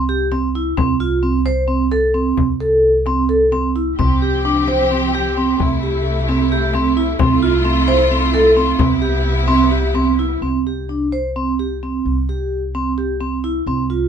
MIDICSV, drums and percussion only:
0, 0, Header, 1, 2, 480
1, 0, Start_track
1, 0, Key_signature, 0, "major"
1, 0, Tempo, 458015
1, 812, Time_signature, 7, 3, 24, 8
1, 9933, Tempo, 465116
1, 14686, End_track
2, 0, Start_track
2, 0, Title_t, "Frame drum"
2, 332, Note_on_c, 9, 64, 39
2, 437, Note_off_c, 9, 64, 0
2, 812, Note_on_c, 9, 64, 55
2, 917, Note_off_c, 9, 64, 0
2, 1529, Note_on_c, 9, 64, 41
2, 1634, Note_off_c, 9, 64, 0
2, 2011, Note_on_c, 9, 64, 37
2, 2116, Note_off_c, 9, 64, 0
2, 2488, Note_on_c, 9, 64, 50
2, 2593, Note_off_c, 9, 64, 0
2, 2728, Note_on_c, 9, 64, 15
2, 2833, Note_off_c, 9, 64, 0
2, 3205, Note_on_c, 9, 64, 39
2, 3310, Note_off_c, 9, 64, 0
2, 3691, Note_on_c, 9, 64, 41
2, 3796, Note_off_c, 9, 64, 0
2, 4183, Note_on_c, 9, 64, 54
2, 4288, Note_off_c, 9, 64, 0
2, 4901, Note_on_c, 9, 64, 45
2, 5006, Note_off_c, 9, 64, 0
2, 5394, Note_on_c, 9, 64, 40
2, 5499, Note_off_c, 9, 64, 0
2, 5868, Note_on_c, 9, 64, 51
2, 5973, Note_off_c, 9, 64, 0
2, 6591, Note_on_c, 9, 64, 44
2, 6696, Note_off_c, 9, 64, 0
2, 7059, Note_on_c, 9, 64, 50
2, 7163, Note_off_c, 9, 64, 0
2, 7538, Note_on_c, 9, 64, 66
2, 7643, Note_off_c, 9, 64, 0
2, 8262, Note_on_c, 9, 64, 49
2, 8367, Note_off_c, 9, 64, 0
2, 8745, Note_on_c, 9, 64, 50
2, 8850, Note_off_c, 9, 64, 0
2, 9214, Note_on_c, 9, 64, 62
2, 9319, Note_off_c, 9, 64, 0
2, 9933, Note_on_c, 9, 64, 48
2, 10036, Note_off_c, 9, 64, 0
2, 10414, Note_on_c, 9, 64, 47
2, 10518, Note_off_c, 9, 64, 0
2, 14686, End_track
0, 0, End_of_file